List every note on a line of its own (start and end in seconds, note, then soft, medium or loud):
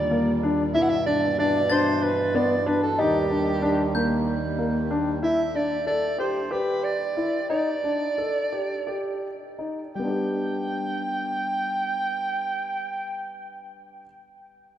0.00 0.73 D#2 medium
0.00 0.73 A#2 medium
0.00 0.72 G3 medium
0.00 0.43 D5 medium
0.11 0.29 A#3 medium
0.43 0.61 D4 medium
0.73 2.95 G2 medium
0.73 2.95 B2 medium
0.73 2.95 E3 medium
0.73 0.92 E4 medium
0.73 0.83 E5 loud
0.82 0.90 F#5 medium
0.89 1.05 E5 loud
1.06 1.24 D4 medium
1.06 1.36 D5 medium
1.39 1.56 D4 medium
1.39 1.69 D5 loud
1.70 2.05 D4 medium
1.70 2.04 C5 medium
1.70 3.25 A6 medium
2.03 2.37 B4 medium
2.35 2.52 B3 medium
2.35 2.68 D5 medium
2.66 2.84 D4 medium
2.66 2.82 B4 medium
2.83 3.00 A4 medium
2.98 5.19 D#2 medium
2.98 5.19 D#3 medium
2.98 5.19 G3 medium
2.98 3.16 D#4 medium
2.98 3.94 G4 medium
3.31 3.48 D4 medium
3.62 3.80 D4 medium
3.95 4.30 A#3 medium
3.95 5.50 G6 soft
4.58 4.76 A#3 medium
4.91 5.08 D4 medium
5.23 5.40 E4 medium
5.23 5.57 E5 medium
5.55 5.72 D4 medium
5.55 5.87 D5 medium
5.87 6.04 A4 medium
5.87 6.17 D5 medium
6.18 6.36 G4 medium
6.18 6.53 C5 medium
6.51 6.87 G4 medium
6.51 6.85 B4 medium
6.84 7.49 D5 medium
7.17 7.35 E4 medium
7.50 7.68 D#4 medium
7.50 9.18 D5 medium
7.84 8.02 D4 soft
8.18 8.37 A4 medium
8.52 8.72 G4 soft
8.87 9.26 G4 medium
9.59 9.79 D#4 soft
9.95 14.00 G3 soft
9.95 13.30 G5 medium
9.99 14.02 B3 soft
9.99 14.04 D4 soft
10.07 14.06 G4 soft